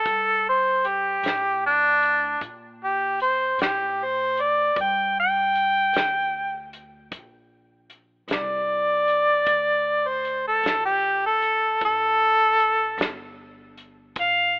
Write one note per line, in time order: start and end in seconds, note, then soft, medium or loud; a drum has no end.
0.00 0.44 A4 medium
0.05 1.20 G2 medium
0.05 kick medium
0.05 closed hi-hat medium
0.49 0.88 C5 medium
0.85 1.62 G4 medium
0.85 closed hi-hat medium
1.23 2.38 A2 medium
1.23 snare medium
1.23 closed hi-hat medium
1.66 2.41 D4 medium
2.02 closed hi-hat medium
2.41 3.56 A#2 medium
2.41 kick medium
2.41 closed hi-hat medium
2.84 3.21 G4 medium
3.20 3.59 C5 medium
3.20 closed hi-hat medium
3.58 4.73 A2 medium
3.58 4.05 G4 medium
3.58 snare loud
3.58 closed hi-hat medium
4.04 4.43 C5 medium
4.37 4.78 D5 medium
4.37 closed hi-hat medium
4.76 5.90 G2 medium
4.76 kick medium
4.76 closed hi-hat medium
4.81 5.17 G5 medium
5.20 6.71 G5 loud
5.55 closed hi-hat medium
5.93 7.08 D2 medium
5.93 snare loud
5.93 closed hi-hat medium
6.73 closed hi-hat medium
7.11 8.25 A#1 medium
7.11 kick medium
7.11 closed hi-hat medium
7.90 closed hi-hat medium
8.28 9.42 C2 medium
8.28 snare medium
8.28 closed hi-hat medium
8.33 10.09 D5 loud
9.08 closed hi-hat medium
9.46 10.60 D2 medium
9.46 kick loud
9.46 closed hi-hat medium
10.08 10.44 C5 medium
10.25 closed hi-hat medium
10.48 10.84 A4 medium
10.63 11.77 A#1 medium
10.63 snare loud
10.63 closed hi-hat medium
10.85 11.22 G4 medium
11.26 11.81 A4 medium
11.42 closed hi-hat medium
11.81 12.95 A1 medium
11.81 13.35 A4 loud
11.81 kick medium
11.81 closed hi-hat medium
12.60 closed hi-hat medium
12.98 14.11 G1 medium
12.98 snare loud
12.98 closed hi-hat medium
13.78 closed hi-hat medium
14.16 14.60 A1 medium
14.16 kick loud
14.16 closed hi-hat medium
14.20 14.56 F5 medium